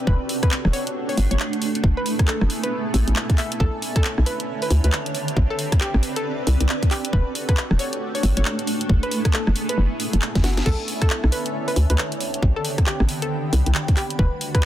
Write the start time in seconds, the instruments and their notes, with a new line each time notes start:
Already playing: analog synth pad D4 G4, ambient pad B4 D5
0.07 fm bass E1, ambient pad D4, analog synth pad F#4 A4, synth pluck B4, kick
0.29 ambient pad A3, open hi-hat
0.43 synth pluck B4, kick, cross-stick, closed hi-hat
0.51 clap
0.65 fm bass E1, cross-stick
0.73 synth pluck C#5, open hi-hat
0.87 closed hi-hat
1.09 synth pluck C#5, open hi-hat
1.17 fm bass G1, open hi-hat
1.31 fm bass G1, synth pluck C#5, closed hi-hat
1.40 clap
1.53 closed hi-hat
1.62 open hi-hat
1.75 closed hi-hat
1.84 fm bass F#1, analog synth pad B3 E4 G#4, ambient pad B3, kick
1.91 ambient pad E5
1.97 synth pluck B4
2.06 open hi-hat
2.19 kick, cross-stick, closed hi-hat
2.28 synth pluck A4, clap
2.41 fm bass F#1, cross-stick
2.50 open hi-hat
2.63 synth pluck B4, closed hi-hat
2.94 fm bass A1, open hi-hat
3.08 fm bass A1, closed hi-hat
3.16 clap
3.30 kick, closed hi-hat
3.38 synth pluck E5, clap, open hi-hat
3.52 closed hi-hat
3.60 fm bass B1, ambient pad D3, analog synth pad C#4 D4, synth pluck A4, kick
3.82 open hi-hat
3.96 synth pluck A4, kick, cross-stick, closed hi-hat
4.04 clap
4.18 fm bass B1, ambient pad A5, cross-stick
4.26 synth pluck B4, open hi-hat
4.40 closed hi-hat
4.62 synth pluck B4, open hi-hat
4.71 fm bass D2, open hi-hat
4.84 fm bass D2, synth pluck B4, closed hi-hat
4.93 clap
5.06 closed hi-hat
5.14 analog synth pad C4 G4 B4, ambient pad C4, open hi-hat
5.26 ambient pad B4, closed hi-hat
5.37 fm bass A1, kick
5.41 ambient pad D5
5.50 synth pluck A4
5.59 open hi-hat
5.72 kick, cross-stick, closed hi-hat
5.81 synth pluck G4, clap
5.94 fm bass A1, cross-stick
6.03 open hi-hat
6.16 synth pluck A4, closed hi-hat
6.47 fm bass C2, open hi-hat
6.61 fm bass C2, closed hi-hat
6.69 clap
6.83 kick, closed hi-hat
6.91 synth pluck G4, clap, open hi-hat
7.05 closed hi-hat
7.13 fm bass E1, ambient pad D4, analog synth pad F#4 A4, synth pluck B4, kick
7.27 ambient pad A3
7.35 open hi-hat
7.49 synth pluck B4, kick, cross-stick, closed hi-hat
7.57 clap
7.71 fm bass E1, cross-stick
7.79 synth pluck C#5, open hi-hat
7.93 closed hi-hat
8.15 synth pluck C#5, open hi-hat
8.23 fm bass G1, open hi-hat
8.37 fm bass G1, synth pluck C#5, closed hi-hat
8.45 clap
8.59 closed hi-hat
8.67 open hi-hat
8.81 closed hi-hat
8.89 fm bass F#1, analog synth pad B3 E4 G#4, ambient pad B3, kick
9.03 synth pluck B4, ambient pad E5, closed hi-hat
9.11 open hi-hat
9.25 kick, cross-stick, closed hi-hat
9.34 synth pluck A4, clap
9.47 fm bass F#1, cross-stick
9.56 open hi-hat
9.69 synth pluck B4, closed hi-hat
9.78 fm bass F#1
10.00 open hi-hat
10.13 fm bass F#1, closed hi-hat
10.22 clap
10.35 fm bass F#1, kick, snare, closed hi-hat
10.44 synth pluck F#4, snare, open hi-hat
10.57 snare, closed hi-hat
10.66 fm bass B1, ambient pad D3, analog synth pad C#4 D4 A4, synth pluck A4, kick, crash
10.74 ambient pad C#5
10.88 open hi-hat
11.01 synth pluck A4, kick, cross-stick, closed hi-hat
11.10 clap
11.17 ambient pad A5
11.24 fm bass B1, cross-stick
11.32 synth pluck B4, open hi-hat
11.46 closed hi-hat
11.68 synth pluck B4, open hi-hat
11.76 fm bass D2, open hi-hat
11.90 fm bass D2, synth pluck B4, closed hi-hat
11.98 clap
12.12 closed hi-hat
12.20 analog synth pad B3 C4 G4, open hi-hat
12.30 ambient pad G5
12.34 closed hi-hat
12.43 fm bass A1, kick
12.50 ambient pad B5
12.56 synth pluck A4
12.65 open hi-hat
12.78 kick, cross-stick, closed hi-hat
12.87 synth pluck G4, clap
13.00 fm bass A1, cross-stick
13.09 open hi-hat
13.22 synth pluck A4, closed hi-hat
13.53 fm bass C2, open hi-hat
13.66 fm bass C2, closed hi-hat
13.75 clap
13.88 kick, closed hi-hat
13.97 synth pluck G4, clap, open hi-hat
14.10 closed hi-hat
14.19 fm bass E1, analog synth pad G3 A3 F#4, synth pluck B4, kick
14.41 open hi-hat
14.55 synth pluck B4, kick, cross-stick, closed hi-hat